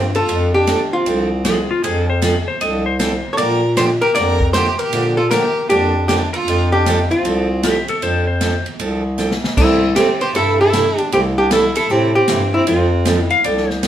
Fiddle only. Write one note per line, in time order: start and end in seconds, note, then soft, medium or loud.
0.00 0.11 C4 medium
0.15 0.51 F4 medium
0.54 0.90 D4 medium
0.93 1.66 C4 medium
3.33 3.38 A4 medium
3.38 3.74 A#4 medium
3.77 3.88 G4 medium
4.02 4.15 G4 medium
4.15 4.51 A#4 medium
4.54 4.79 G4 medium
4.79 5.17 G4 medium
5.18 5.31 F4 medium
5.31 5.67 G4 medium
5.70 6.06 D4 medium
6.08 6.28 D4 medium
6.33 6.72 F4 medium
6.72 7.08 D4 medium
7.11 7.84 C4 medium
9.58 9.93 C4 medium
9.97 10.19 C4 medium
10.21 10.34 G4 medium
10.35 10.58 E4 medium
10.60 11.09 E4 medium
11.13 11.24 C4 medium
11.38 11.50 D4 medium
11.52 11.74 E4 medium
11.77 11.93 E4 medium
11.91 12.15 C4 medium
12.16 12.51 C4 medium
12.55 12.67 C4 medium
12.68 13.18 C4 medium
13.18 13.41 B3 medium